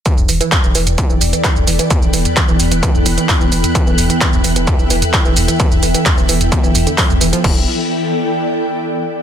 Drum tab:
CC |----------------|----------------|----------------|----------------|
HH |x-oxx-oxx-oxx-ox|x-oxx-oxx-oxo-ox|x-oxx-oxx-oxx-ox|x-oxx-oxx-oxo-ox|
SH |xxxxxxxxxxxxxxxx|xxxxxxxxxxxxxxxx|xxxxxxxxxxxxxxxx|xxxxxxxxxxxxxxxx|
CP |----x-------x---|----x-------x---|----x-------x---|----x-------x---|
T2 |-o--o--o--o--o--|o--o--o--o--o--o|--o--o--o--o--o-|-o--o--o--o--o--|
BD |o---o---o---o---|o---o---o---o---|o---o---o---o---|o---o---o---o---|

CC |x---------------|
HH |----------------|
SH |----------------|
CP |----------------|
T2 |----------------|
BD |o---------------|